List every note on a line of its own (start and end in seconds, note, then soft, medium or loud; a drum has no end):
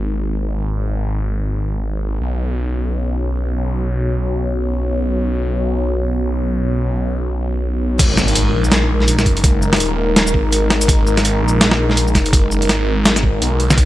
0.00 2.19 G#1 medium
0.00 2.17 G#3 medium
0.00 2.17 D#4 medium
0.00 2.17 A#4 medium
2.21 7.98 B1 medium
2.21 7.95 B3 medium
2.21 7.95 F#4 medium
2.21 7.95 C#5 medium
7.99 8.52 G#1 loud
7.99 13.74 G#3 medium
7.99 13.74 D#4 medium
7.99 13.74 A#4 medium
7.99 kick loud
7.99 closed hi-hat medium
7.99 crash loud
7.99 impact medium
8.17 snare medium
8.17 shaker soft
8.28 closed hi-hat soft
8.35 closed hi-hat medium
8.54 9.25 A#1 loud
8.64 shaker soft
8.72 snare loud
8.72 snare medium
8.72 closed hi-hat medium
9.00 snare soft
9.08 closed hi-hat medium
9.08 shaker soft
9.19 snare medium
9.19 shaker soft
9.26 9.79 F#1 medium
9.26 kick medium
9.26 closed hi-hat soft
9.37 closed hi-hat soft
9.44 kick loud
9.44 closed hi-hat medium
9.62 shaker soft
9.73 snare medium
9.73 closed hi-hat soft
9.76 10.33 D#1 loud
9.76 closed hi-hat soft
9.80 closed hi-hat medium
10.16 snare loud
10.16 snare medium
10.16 closed hi-hat medium
10.27 shaker medium
10.34 10.87 G#1 loud
10.34 kick medium
10.52 closed hi-hat medium
10.70 snare medium
10.70 closed hi-hat soft
10.81 closed hi-hat soft
10.81 shaker medium
10.88 11.41 G#1 loud
10.88 kick loud
10.88 closed hi-hat medium
11.07 shaker soft
11.17 snare medium
11.17 closed hi-hat soft
11.25 closed hi-hat medium
11.43 12.14 A#1 loud
11.48 shaker soft
11.61 snare loud
11.61 closed hi-hat medium
11.71 snare medium
11.90 snare soft
11.97 closed hi-hat medium
11.97 shaker soft
12.08 shaker soft
12.15 12.68 F#1 medium
12.15 kick medium
12.15 snare medium
12.15 closed hi-hat soft
12.26 closed hi-hat soft
12.33 kick loud
12.33 closed hi-hat medium
12.51 shaker soft
12.62 closed hi-hat soft
12.69 13.40 G#1 medium
12.69 snare medium
12.69 closed hi-hat medium
13.05 snare loud
13.05 closed hi-hat medium
13.16 snare medium
13.16 shaker medium
13.23 kick medium
13.41 13.76 B1 medium
13.41 closed hi-hat medium
13.60 closed hi-hat soft
13.70 snare medium
13.70 closed hi-hat soft
13.70 shaker medium
13.78 13.85 B1 loud
13.78 13.85 B3 medium
13.78 13.85 F#4 medium
13.78 13.85 C#5 medium
13.78 kick loud
13.78 closed hi-hat medium